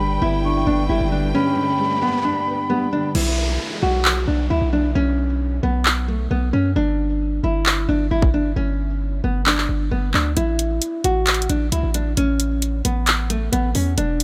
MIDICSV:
0, 0, Header, 1, 9, 480
1, 0, Start_track
1, 0, Key_signature, 2, "minor"
1, 0, Tempo, 451128
1, 1430, Time_signature, 4, 2, 24, 8
1, 15147, End_track
2, 0, Start_track
2, 0, Title_t, "Flute"
2, 0, Program_c, 0, 73
2, 0, Note_on_c, 0, 83, 117
2, 426, Note_off_c, 0, 83, 0
2, 476, Note_on_c, 0, 85, 89
2, 925, Note_off_c, 0, 85, 0
2, 1430, Note_on_c, 0, 83, 122
2, 3308, Note_off_c, 0, 83, 0
2, 15147, End_track
3, 0, Start_track
3, 0, Title_t, "String section"
3, 0, Program_c, 1, 48
3, 0, Note_on_c, 1, 50, 78
3, 0, Note_on_c, 1, 71, 72
3, 0, Note_on_c, 1, 79, 90
3, 3309, Note_off_c, 1, 71, 0
3, 3312, Note_off_c, 1, 50, 0
3, 3312, Note_off_c, 1, 79, 0
3, 15147, End_track
4, 0, Start_track
4, 0, Title_t, "Nylon-string guitar"
4, 0, Program_c, 2, 24
4, 0, Note_on_c, 2, 62, 89
4, 188, Note_off_c, 2, 62, 0
4, 232, Note_on_c, 2, 64, 76
4, 682, Note_off_c, 2, 64, 0
4, 711, Note_on_c, 2, 62, 79
4, 892, Note_off_c, 2, 62, 0
4, 949, Note_on_c, 2, 64, 74
4, 1130, Note_off_c, 2, 64, 0
4, 1191, Note_on_c, 2, 62, 76
4, 1371, Note_off_c, 2, 62, 0
4, 1431, Note_on_c, 2, 61, 97
4, 2108, Note_off_c, 2, 61, 0
4, 2148, Note_on_c, 2, 59, 73
4, 2330, Note_off_c, 2, 59, 0
4, 2390, Note_on_c, 2, 62, 65
4, 2842, Note_off_c, 2, 62, 0
4, 2869, Note_on_c, 2, 59, 81
4, 3050, Note_off_c, 2, 59, 0
4, 3113, Note_on_c, 2, 62, 82
4, 3293, Note_off_c, 2, 62, 0
4, 3351, Note_on_c, 2, 64, 107
4, 4028, Note_off_c, 2, 64, 0
4, 4070, Note_on_c, 2, 66, 75
4, 4521, Note_off_c, 2, 66, 0
4, 4548, Note_on_c, 2, 62, 81
4, 4730, Note_off_c, 2, 62, 0
4, 4791, Note_on_c, 2, 64, 85
4, 4971, Note_off_c, 2, 64, 0
4, 5031, Note_on_c, 2, 62, 81
4, 5211, Note_off_c, 2, 62, 0
4, 5270, Note_on_c, 2, 61, 104
4, 5947, Note_off_c, 2, 61, 0
4, 5991, Note_on_c, 2, 59, 82
4, 6442, Note_off_c, 2, 59, 0
4, 6471, Note_on_c, 2, 57, 68
4, 6651, Note_off_c, 2, 57, 0
4, 6711, Note_on_c, 2, 59, 80
4, 6892, Note_off_c, 2, 59, 0
4, 6950, Note_on_c, 2, 61, 81
4, 7131, Note_off_c, 2, 61, 0
4, 7192, Note_on_c, 2, 62, 93
4, 7869, Note_off_c, 2, 62, 0
4, 7913, Note_on_c, 2, 64, 76
4, 8363, Note_off_c, 2, 64, 0
4, 8391, Note_on_c, 2, 62, 81
4, 8571, Note_off_c, 2, 62, 0
4, 8630, Note_on_c, 2, 64, 75
4, 8811, Note_off_c, 2, 64, 0
4, 8871, Note_on_c, 2, 62, 76
4, 9052, Note_off_c, 2, 62, 0
4, 9111, Note_on_c, 2, 61, 98
4, 9788, Note_off_c, 2, 61, 0
4, 9829, Note_on_c, 2, 59, 75
4, 10010, Note_off_c, 2, 59, 0
4, 10071, Note_on_c, 2, 62, 70
4, 10522, Note_off_c, 2, 62, 0
4, 10548, Note_on_c, 2, 59, 78
4, 10730, Note_off_c, 2, 59, 0
4, 10792, Note_on_c, 2, 62, 83
4, 10972, Note_off_c, 2, 62, 0
4, 11029, Note_on_c, 2, 64, 100
4, 11707, Note_off_c, 2, 64, 0
4, 11751, Note_on_c, 2, 66, 81
4, 12202, Note_off_c, 2, 66, 0
4, 12230, Note_on_c, 2, 62, 86
4, 12411, Note_off_c, 2, 62, 0
4, 12469, Note_on_c, 2, 64, 77
4, 12650, Note_off_c, 2, 64, 0
4, 12711, Note_on_c, 2, 62, 83
4, 12892, Note_off_c, 2, 62, 0
4, 12951, Note_on_c, 2, 61, 99
4, 13628, Note_off_c, 2, 61, 0
4, 13670, Note_on_c, 2, 59, 74
4, 14121, Note_off_c, 2, 59, 0
4, 14150, Note_on_c, 2, 57, 73
4, 14331, Note_off_c, 2, 57, 0
4, 14389, Note_on_c, 2, 59, 83
4, 14570, Note_off_c, 2, 59, 0
4, 14632, Note_on_c, 2, 61, 87
4, 14812, Note_off_c, 2, 61, 0
4, 14871, Note_on_c, 2, 62, 100
4, 15147, Note_off_c, 2, 62, 0
4, 15147, End_track
5, 0, Start_track
5, 0, Title_t, "Grand piano"
5, 0, Program_c, 3, 0
5, 0, Control_c, 3, 64, 127
5, 0, Note_on_c, 3, 43, 94
5, 0, Note_on_c, 3, 50, 77
5, 0, Note_on_c, 3, 55, 82
5, 228, Note_on_c, 3, 59, 91
5, 468, Note_on_c, 3, 62, 94
5, 693, Note_off_c, 3, 59, 0
5, 709, Note_on_c, 3, 59, 84
5, 710, Note_off_c, 3, 43, 0
5, 933, Note_off_c, 3, 55, 0
5, 949, Note_on_c, 3, 55, 90
5, 950, Note_off_c, 3, 50, 0
5, 1190, Note_on_c, 3, 50, 77
5, 1430, Note_on_c, 3, 43, 92
5, 1654, Note_off_c, 3, 50, 0
5, 1669, Note_off_c, 3, 62, 0
5, 1670, Note_on_c, 3, 50, 78
5, 1894, Note_off_c, 3, 55, 0
5, 1910, Note_off_c, 3, 59, 0
5, 1910, Note_on_c, 3, 55, 85
5, 2150, Note_on_c, 3, 59, 85
5, 2390, Note_on_c, 3, 62, 96
5, 2615, Note_off_c, 3, 59, 0
5, 2630, Note_off_c, 3, 43, 0
5, 2631, Note_on_c, 3, 59, 84
5, 2856, Note_off_c, 3, 55, 0
5, 2870, Note_off_c, 3, 50, 0
5, 2872, Note_on_c, 3, 55, 88
5, 3111, Note_on_c, 3, 50, 82
5, 3350, Note_off_c, 3, 62, 0
5, 3351, Note_off_c, 3, 50, 0
5, 3351, Note_off_c, 3, 55, 0
5, 3351, Note_off_c, 3, 59, 0
5, 3364, Control_c, 3, 64, 0
5, 15147, End_track
6, 0, Start_track
6, 0, Title_t, "808-style bass"
6, 0, Program_c, 4, 38
6, 0, Note_on_c, 4, 31, 112
6, 202, Note_off_c, 4, 31, 0
6, 231, Note_on_c, 4, 31, 104
6, 691, Note_off_c, 4, 31, 0
6, 710, Note_on_c, 4, 31, 101
6, 941, Note_off_c, 4, 31, 0
6, 951, Note_on_c, 4, 31, 103
6, 1066, Note_off_c, 4, 31, 0
6, 1070, Note_on_c, 4, 31, 99
6, 1416, Note_off_c, 4, 31, 0
6, 3351, Note_on_c, 4, 35, 116
6, 3811, Note_off_c, 4, 35, 0
6, 4070, Note_on_c, 4, 35, 104
6, 4531, Note_off_c, 4, 35, 0
6, 4551, Note_on_c, 4, 35, 106
6, 4781, Note_off_c, 4, 35, 0
6, 4790, Note_on_c, 4, 38, 102
6, 4905, Note_off_c, 4, 38, 0
6, 4911, Note_on_c, 4, 35, 105
6, 5256, Note_off_c, 4, 35, 0
6, 5270, Note_on_c, 4, 35, 117
6, 5961, Note_off_c, 4, 35, 0
6, 5990, Note_on_c, 4, 35, 102
6, 6681, Note_off_c, 4, 35, 0
6, 6710, Note_on_c, 4, 35, 105
6, 6941, Note_off_c, 4, 35, 0
6, 6949, Note_on_c, 4, 42, 100
6, 7180, Note_off_c, 4, 42, 0
6, 7190, Note_on_c, 4, 31, 113
6, 7881, Note_off_c, 4, 31, 0
6, 7910, Note_on_c, 4, 31, 109
6, 8371, Note_off_c, 4, 31, 0
6, 8390, Note_on_c, 4, 31, 104
6, 8621, Note_off_c, 4, 31, 0
6, 8630, Note_on_c, 4, 31, 102
6, 9091, Note_off_c, 4, 31, 0
6, 9109, Note_on_c, 4, 31, 114
6, 9801, Note_off_c, 4, 31, 0
6, 9830, Note_on_c, 4, 31, 109
6, 10291, Note_off_c, 4, 31, 0
6, 10310, Note_on_c, 4, 31, 104
6, 10540, Note_off_c, 4, 31, 0
6, 10550, Note_on_c, 4, 31, 106
6, 10781, Note_off_c, 4, 31, 0
6, 10790, Note_on_c, 4, 38, 100
6, 11020, Note_off_c, 4, 38, 0
6, 11030, Note_on_c, 4, 33, 108
6, 11491, Note_off_c, 4, 33, 0
6, 11750, Note_on_c, 4, 33, 104
6, 12211, Note_off_c, 4, 33, 0
6, 12230, Note_on_c, 4, 33, 100
6, 12461, Note_off_c, 4, 33, 0
6, 12470, Note_on_c, 4, 37, 107
6, 12585, Note_off_c, 4, 37, 0
6, 12591, Note_on_c, 4, 33, 105
6, 12936, Note_off_c, 4, 33, 0
6, 12951, Note_on_c, 4, 33, 116
6, 13642, Note_off_c, 4, 33, 0
6, 13671, Note_on_c, 4, 33, 104
6, 14362, Note_off_c, 4, 33, 0
6, 14391, Note_on_c, 4, 33, 107
6, 14621, Note_off_c, 4, 33, 0
6, 14632, Note_on_c, 4, 40, 101
6, 14862, Note_off_c, 4, 40, 0
6, 14871, Note_on_c, 4, 28, 113
6, 15147, Note_off_c, 4, 28, 0
6, 15147, End_track
7, 0, Start_track
7, 0, Title_t, "Downlifter"
7, 0, Program_c, 5, 103
7, 3351, Note_on_c, 5, 60, 84
7, 7191, Note_off_c, 5, 60, 0
7, 15147, End_track
8, 0, Start_track
8, 0, Title_t, "Riser"
8, 0, Program_c, 6, 103
8, 0, Note_on_c, 6, 60, 82
8, 2390, Note_off_c, 6, 60, 0
8, 15147, End_track
9, 0, Start_track
9, 0, Title_t, "Drums"
9, 3351, Note_on_c, 9, 49, 94
9, 3457, Note_off_c, 9, 49, 0
9, 4310, Note_on_c, 9, 39, 119
9, 4416, Note_off_c, 9, 39, 0
9, 6230, Note_on_c, 9, 39, 124
9, 6337, Note_off_c, 9, 39, 0
9, 8150, Note_on_c, 9, 39, 121
9, 8257, Note_off_c, 9, 39, 0
9, 8750, Note_on_c, 9, 36, 96
9, 8856, Note_off_c, 9, 36, 0
9, 10070, Note_on_c, 9, 39, 120
9, 10176, Note_off_c, 9, 39, 0
9, 10189, Note_on_c, 9, 39, 71
9, 10296, Note_off_c, 9, 39, 0
9, 10790, Note_on_c, 9, 39, 83
9, 10896, Note_off_c, 9, 39, 0
9, 11030, Note_on_c, 9, 42, 72
9, 11136, Note_off_c, 9, 42, 0
9, 11269, Note_on_c, 9, 42, 81
9, 11375, Note_off_c, 9, 42, 0
9, 11508, Note_on_c, 9, 42, 81
9, 11615, Note_off_c, 9, 42, 0
9, 11750, Note_on_c, 9, 42, 78
9, 11857, Note_off_c, 9, 42, 0
9, 11990, Note_on_c, 9, 42, 67
9, 11991, Note_on_c, 9, 39, 119
9, 12070, Note_off_c, 9, 42, 0
9, 12070, Note_on_c, 9, 42, 63
9, 12097, Note_off_c, 9, 39, 0
9, 12150, Note_off_c, 9, 42, 0
9, 12150, Note_on_c, 9, 42, 63
9, 12230, Note_off_c, 9, 42, 0
9, 12230, Note_on_c, 9, 42, 69
9, 12337, Note_off_c, 9, 42, 0
9, 12472, Note_on_c, 9, 42, 76
9, 12578, Note_off_c, 9, 42, 0
9, 12708, Note_on_c, 9, 42, 79
9, 12814, Note_off_c, 9, 42, 0
9, 12951, Note_on_c, 9, 42, 69
9, 13057, Note_off_c, 9, 42, 0
9, 13190, Note_on_c, 9, 42, 79
9, 13296, Note_off_c, 9, 42, 0
9, 13429, Note_on_c, 9, 42, 81
9, 13536, Note_off_c, 9, 42, 0
9, 13671, Note_on_c, 9, 42, 80
9, 13778, Note_off_c, 9, 42, 0
9, 13907, Note_on_c, 9, 42, 75
9, 13912, Note_on_c, 9, 39, 124
9, 14014, Note_off_c, 9, 42, 0
9, 14018, Note_off_c, 9, 39, 0
9, 14152, Note_on_c, 9, 42, 70
9, 14258, Note_off_c, 9, 42, 0
9, 14393, Note_on_c, 9, 42, 76
9, 14499, Note_off_c, 9, 42, 0
9, 14628, Note_on_c, 9, 46, 82
9, 14735, Note_off_c, 9, 46, 0
9, 14871, Note_on_c, 9, 42, 71
9, 14977, Note_off_c, 9, 42, 0
9, 15110, Note_on_c, 9, 42, 80
9, 15147, Note_off_c, 9, 42, 0
9, 15147, End_track
0, 0, End_of_file